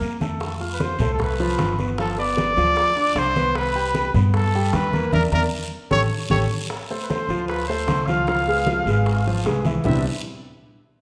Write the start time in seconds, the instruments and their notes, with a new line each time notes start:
Already playing: grand piano A#3 A#4 A#5, trumpet A#4, flute A#5
0.01 upright bass F2, high conga, short guiro
0.20 grand piano A3 A4 A5, low bongo, high conga, short guiro
0.40 high bongo, high conga, long guiro
0.60 grand piano F4 F5 F6, high conga
0.73 trumpet B4, flute B5
0.80 trumpet C5, flute C6, high bongo, high conga, short guiro
0.99 upright bass C2, grand piano A3 A4 A5, high conga, low conga, short guiro
1.13 trumpet A4, flute A5
1.19 trumpet B4, flute B5, high bongo, high conga, low conga, long guiro
1.39 grand piano F3 F4 F5, high conga
1.58 upright bass G1, high bongo, low bongo, high conga, short guiro
1.79 grand piano B3 B4 B5, high conga, short guiro
1.98 grand piano F3 F4 F5, trumpet A4, flute A5, high bongo, high conga, long guiro
2.18 grand piano B3 B4 B5, trumpet D5, flute D6, high bongo, high conga
2.37 high bongo, high conga, short guiro
2.56 upright bass D2, grand piano F3 F4 F5, high bongo, high conga, short guiro
2.76 high bongo, high conga, long guiro
2.96 grand piano D4 D5 D6, high conga
3.15 upright bass C2, trumpet C5, flute C6, high bongo, low bongo, high conga, short guiro
3.35 grand piano B3 B4 B5, high bongo, high conga, short guiro
3.55 trumpet B4, flute B5, high bongo, high conga, long guiro
3.75 grand piano G4 G5 G6, high conga
3.95 high bongo, high conga, short guiro
4.14 upright bass G2, grand piano B3 B4 B5, high conga, low conga, short guiro
4.33 trumpet A4, flute A5, high bongo, high conga, long guiro
4.54 grand piano G3 G4 G5, high conga
4.73 upright bass E2, trumpet B4, flute B5, high bongo, low bongo, high conga, short guiro
4.93 grand piano A#3 A#4 A#5, high conga, short guiro
5.12 upright bass E2, grand piano A#4 D5 E5, trumpet A#4, flute A#5, low bongo, high conga, long guiro
5.31 upright bass E2, grand piano A#4 D5 E5, trumpet A#4, flute A#5, low bongo, high conga, long guiro
5.91 upright bass A1, grand piano G4 A4 C#5, trumpet C#5, flute C#6, low bongo, high conga, long guiro
6.30 upright bass A1, grand piano G4 A4 C#5, trumpet C#5, flute C#6, low bongo, high conga, long guiro
6.70 high bongo, high conga
6.90 grand piano A3 A4 C5, high conga
7.02 trumpet B4, flute B5
7.09 grand piano A3 A4 C5, trumpet C5, flute C6, high bongo, high conga, short guiro
7.29 upright bass D2, grand piano F3 F4 F5, high conga, short guiro
7.48 trumpet B4, flute B5, high bongo, high conga, long guiro
7.66 grand piano A3 A4 C5, trumpet C5, flute C6, high conga
7.87 upright bass C#2, high bongo, low bongo, high conga, short guiro
8.06 grand piano F3 F4 F5, trumpet F5, flute F6, high conga, short guiro
8.27 grand piano F3 F4 F5, high bongo, long guiro
8.47 grand piano G#3 G#4 B4, high bongo, high conga
8.67 grand piano F3 F4 F5, high bongo, high conga, short guiro
8.86 upright bass G#1, grand piano G#3 G#4 B4, high bongo, high conga, short guiro
9.06 high bongo, high conga, long guiro
9.26 grand piano F3 F4 F5, high conga
9.45 upright bass C2, grand piano G#3 G#4 B4, high bongo, low bongo, high conga, short guiro
9.65 grand piano E3 E4 E5, high bongo, high conga, short guiro
9.84 upright bass C2, grand piano C3 G3 B3 C4 D4 E4, flute E4, trumpet E5, low bongo, low conga, long guiro